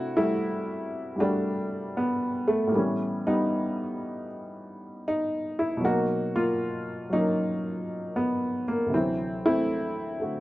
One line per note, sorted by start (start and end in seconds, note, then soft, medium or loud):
0.00 2.71 C3 medium
0.00 0.15 A3 soft
0.00 1.19 D4 soft
0.00 0.15 E4 medium
0.00 0.17 F#4 loud
0.17 1.14 G3 medium
0.17 1.19 A3 medium
0.17 1.15 E4 medium
1.16 1.19 G3 soft
1.16 2.72 E4 soft
1.16 2.73 F#4 soft
1.20 2.70 G3 medium
1.20 2.46 A3 medium
1.20 1.99 D4 medium
1.97 2.08 B3 medium
2.48 2.67 A3 medium
2.67 5.79 A2 medium
2.67 2.73 A#3 medium
2.71 2.74 G3 soft
2.71 3.26 B3 soft
2.76 4.25 E3 medium
2.76 3.26 G3 medium
2.76 5.85 C#4 medium
3.27 5.03 G3 medium
3.27 5.02 B3 medium
3.27 5.06 D#4 medium
5.08 5.59 D#4 medium
5.59 5.84 E4 medium
5.77 8.90 B2 medium
5.77 7.08 F#3 soft
5.84 6.34 A#3 medium
5.84 5.86 D#4 medium
5.84 6.36 F#4 medium
5.84 8.93 A#4 soft
5.88 7.11 D#4 medium
6.36 7.12 A#3 medium
6.36 7.14 F4 medium
7.10 7.11 F#3 soft
7.10 8.63 F#3 medium
7.10 8.63 A#3 medium
7.10 8.93 C#4 soft
7.10 8.19 D#4 medium
8.16 8.63 B3 medium
8.68 8.94 A#3 medium
8.86 10.40 D2 soft
8.86 10.40 C3 soft
8.94 10.40 E3 medium
8.94 10.40 F#3 soft
8.94 9.45 C4 medium
8.94 9.44 E4 medium
9.46 10.20 A3 medium
9.46 10.40 C4 medium
9.46 10.40 E4 medium
10.20 10.40 D3 soft
10.20 10.40 A3 soft
10.20 10.40 F#4 soft